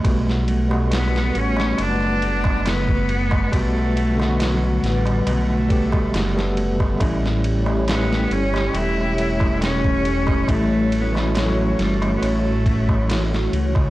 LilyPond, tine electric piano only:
\new Staff \with { instrumentName = "Tine electric piano" } { \time 4/4 \key g \lydian \tempo 4 = 69 <g a b fis'>8. <g a b fis'>2.~ <g a b fis'>16 | <g a b fis'>8. <d a b fis'>4.~ <d a b fis'>16 <g a b g'>8. <g a b a'>8. | <g a cis' e'>8. <g a cis' e'>2.~ <g a cis' e'>16 | <g a cis' e'>8. <e a cis' e'>2.~ <e a cis' e'>16 | }